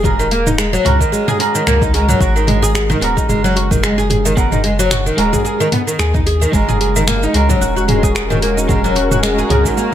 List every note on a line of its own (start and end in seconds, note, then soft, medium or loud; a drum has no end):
0.00 0.79 E1 medium
0.00 0.28 G#3 medium
0.04 0.28 C#4 medium
0.04 0.28 F#4 medium
0.04 0.18 G#4 medium
0.04 0.29 A#4 loud
0.04 kick loud
0.04 mid tom medium
0.04 cabasa medium
0.19 0.26 D#3 medium
0.19 cabasa soft
0.31 0.46 A#3 medium
0.31 open hi-hat medium
0.47 0.58 D#4 medium
0.47 mid tom medium
0.47 cabasa medium
0.58 0.72 G#3 medium
0.58 finger snap loud
0.58 cabasa medium
0.73 0.85 F#3 loud
0.73 cabasa soft
0.85 1.04 C#2 medium
0.85 1.37 G#3 medium
0.85 1.37 C#4 medium
0.85 1.00 F#4 medium
0.85 1.37 F#4 medium
0.85 1.38 A#4 medium
0.85 mid tom medium
0.85 open hi-hat medium
1.00 1.11 D#3 medium
1.00 kick medium
1.00 cabasa medium
1.12 1.26 G#3 medium
1.12 cabasa medium
1.28 1.39 G#4 loud
1.28 mid tom medium
1.28 cabasa soft
1.39 1.91 G#3 medium
1.39 1.91 C#4 medium
1.39 1.91 F#4 medium
1.39 1.54 G#4 medium
1.39 1.91 A#4 medium
1.39 open hi-hat medium
1.55 1.62 D#3 medium
1.55 cabasa medium
1.67 2.14 C#2 medium
1.67 1.81 A#3 medium
1.67 finger snap loud
1.67 mid tom medium
1.67 cabasa medium
1.82 1.93 D#4 medium
1.82 kick loud
1.82 cabasa soft
1.93 2.18 G#3 medium
1.93 2.07 G#3 medium
1.93 2.18 C#4 medium
1.93 2.18 F#4 medium
1.93 2.19 A#4 medium
1.93 open hi-hat medium
2.09 2.20 F#3 loud
2.09 mid tom medium
2.09 cabasa medium
2.20 2.95 G#1 loud
2.20 2.98 G#3 medium
2.20 2.99 C#4 medium
2.20 2.35 F#4 medium
2.20 3.00 F#4 medium
2.20 kick loud
2.20 cabasa medium
2.24 3.00 A#4 loud
2.36 2.47 D#3 medium
2.36 cabasa soft
2.47 2.61 G#3 medium
2.47 mid tom medium
2.47 open hi-hat medium
2.62 2.74 G#4 loud
2.62 cabasa medium
2.75 2.88 G#4 medium
2.75 finger snap loud
2.75 cabasa medium
2.90 2.97 D#3 loud
2.90 mid tom medium
2.90 cabasa soft
3.00 3.20 D#1 medium
3.00 4.33 G#3 medium
3.00 3.16 B3 medium
3.00 4.34 C#4 medium
3.00 4.35 F#4 medium
3.00 open hi-hat medium
3.04 4.35 A#4 medium
3.17 3.28 D#4 medium
3.17 kick loud
3.17 cabasa medium
3.29 5.11 F#1 medium
3.29 3.43 G#3 medium
3.29 mid tom medium
3.29 cabasa medium
3.44 3.55 F#3 loud
3.44 cabasa soft
3.56 3.70 F#4 medium
3.56 open hi-hat medium
3.71 3.82 D#3 medium
3.71 kick loud
3.71 mid tom medium
3.71 cabasa medium
3.83 3.97 G#3 medium
3.83 finger snap loud
3.83 cabasa medium
3.98 4.09 G#4 loud
3.98 cabasa soft
4.10 4.24 G#4 medium
4.10 mid tom medium
4.10 open hi-hat medium
4.25 4.32 D#3 loud
4.25 cabasa medium
4.36 4.60 G#3 loud
4.36 4.51 B3 medium
4.36 4.60 C#4 medium
4.36 4.61 F#4 medium
4.36 4.61 A#4 loud
4.36 kick loud
4.36 cabasa medium
4.52 4.63 D#4 medium
4.52 mid tom medium
4.52 cabasa soft
4.64 4.78 G#3 medium
4.64 open hi-hat medium
4.79 4.90 F#3 loud
4.79 cabasa medium
4.91 5.05 F#4 medium
4.91 finger snap loud
4.91 mid tom medium
4.91 cabasa medium
5.06 5.17 D#3 medium
5.06 cabasa soft
5.17 5.37 D#1 medium
5.17 5.69 G#3 medium
5.17 5.32 G#3 medium
5.17 5.70 C#4 medium
5.17 5.70 F#4 medium
5.17 5.70 A#4 medium
5.17 open hi-hat medium
5.33 5.43 G#4 loud
5.33 kick medium
5.33 mid tom medium
5.33 cabasa medium
5.45 5.59 G#4 medium
5.45 cabasa medium
5.60 5.67 D#3 loud
5.60 cabasa soft
5.72 5.81 B3 loud
5.72 mid tom medium
5.72 open hi-hat medium
5.87 5.98 D#3 medium
5.87 cabasa medium
5.99 6.46 D#2 medium
5.99 6.14 G#4 loud
5.99 finger snap medium
5.99 cabasa medium
6.14 6.25 D#4 medium
6.14 kick loud
6.14 mid tom medium
6.14 cabasa soft
6.26 6.41 G#4 medium
6.26 open hi-hat medium
6.41 6.52 D#3 medium
6.41 cabasa medium
6.52 7.27 F#1 loud
6.52 7.31 G#3 medium
6.52 6.67 G#3 medium
6.52 9.94 G#3 medium
6.52 7.31 C#4 medium
6.52 7.32 F#4 medium
6.52 7.33 A#4 medium
6.52 kick loud
6.52 cabasa medium
6.69 6.80 G#4 loud
6.69 mid tom medium
6.69 cabasa soft
6.81 6.94 G#4 medium
6.81 open hi-hat medium
6.96 7.02 D#3 loud
6.96 cabasa medium
7.08 7.22 A#3 medium
7.08 finger snap loud
7.08 mid tom medium
7.08 cabasa medium
7.23 9.94 C#4 medium
7.23 7.34 D#4 medium
7.23 cabasa soft
7.30 8.66 G#3 medium
7.30 9.94 F#4 medium
7.34 7.53 C#2 medium
7.34 7.48 G#3 medium
7.34 8.66 C#4 medium
7.34 8.67 F#4 medium
7.34 8.68 A#4 medium
7.34 open hi-hat medium
7.49 7.61 F#3 loud
7.49 kick medium
7.49 mid tom medium
7.49 cabasa medium
7.59 9.44 E1 medium
7.59 7.75 F#4 medium
7.59 9.94 A#4 medium
7.59 cabasa medium
7.76 7.83 F#4 medium
7.76 cabasa soft
7.88 8.02 G#3 medium
7.88 mid tom medium
7.88 open hi-hat medium
8.03 8.14 G#4 loud
8.03 kick loud
8.03 cabasa medium
8.15 8.29 G#4 medium
8.15 finger snap medium
8.15 cabasa medium
8.30 8.37 D#3 loud
8.30 mid tom medium
8.30 cabasa soft
8.42 8.57 A#3 medium
8.42 open hi-hat medium
8.57 8.69 D#4 medium
8.57 cabasa medium
8.68 8.93 G#3 medium
8.68 8.83 G#3 medium
8.68 8.93 C#4 medium
8.68 8.93 F#4 medium
8.68 8.94 A#4 loud
8.68 kick loud
8.68 mid tom medium
8.68 cabasa medium
8.84 8.96 F#3 loud
8.84 cabasa soft
8.95 9.10 F#4 medium
8.95 open hi-hat medium
9.11 9.18 F#4 medium
9.11 mid tom medium
9.11 cabasa medium
9.23 9.37 G#3 medium
9.23 finger snap loud
9.23 cabasa medium
9.38 9.49 G#4 loud
9.38 cabasa soft
9.49 9.69 C#2 medium
9.49 9.94 G#3 medium
9.49 9.94 C#4 medium
9.49 9.94 F#4 medium
9.49 9.64 G#4 medium
9.49 9.94 A#4 medium
9.49 mid tom medium
9.49 open hi-hat medium
9.65 9.72 D#3 loud
9.65 kick medium
9.65 cabasa medium
9.77 9.92 A#3 medium
9.77 cabasa medium